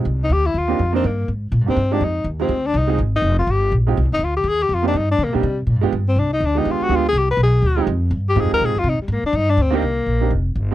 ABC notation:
X:1
M:4/4
L:1/8
Q:"Swing" 1/4=246
K:Cm
V:1 name="Tenor saxophone"
z E G =E F3 C | B,2 z3 C2 D | E2 z C2 D E2 | z E2 F G2 z2 |
z E F G A G F D | E D B, G,2 z3 | z C D E D E F ^F | F A G =B A4 |
z3 G A B A F | E G, B, D E D C B,- | B,4 z4 |]
V:2 name="Grand piano"
z4 z [B,CDEG] z [B,CDEB] | z4 z [B,CDEG] z [A,CEFG] | z3 [A,CEFG] z3 [A,CEFA] | z6 z [A,CEFG] |
z6 z [B,CDEG] | z3 [B,CDEG] z3 [A,=B,DFG] | z4 z [A,=B,DFG]3 | [A,=B,DFG] z6 [A,CEFG] |
z4 [A,CEFG]3 z | z6 z [B,CDEG] | z3 [B,CDEG] z3 A, |]
V:3 name="Upright bass" clef=bass
C,,2 D,,2 E,,2 F,,2 | G,,2 A,,2 (3B,, G,, E,, G,,2 | F,,2 E,,2 D,,2 C,,2 | A,,,2 F,,,2 G,,,2 B,,,2 |
(3C,, A,,, F,,, D,,2 E,,2 F,,2 | G,,2 (3D, C, B,, C,2 (3B,, G,, E,, | G,,2 C,,2 D,,2 E,, z | D,,2 C,,2 =B,,,2 D,,2 |
F,,2 G,,2 (3A,, F,, E,, (3B,, A,, F,, | C, z A,, z G,,2 D,,2 | C,,2 B,,,2 F,,,2 G,,,2 |]